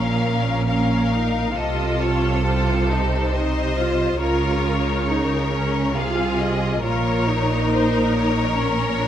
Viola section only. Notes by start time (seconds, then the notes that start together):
Already playing: C#4
0.69 C#4
1.12 D#4
1.57 F4
2.46 F4
2.90 D#4
3.35 D#4
3.79 F4
4.23 F4
5.10 D#4
5.53 C#4
5.96 F4
6.83 F4
7.27 D#4
8.56 C#4
9.01 D4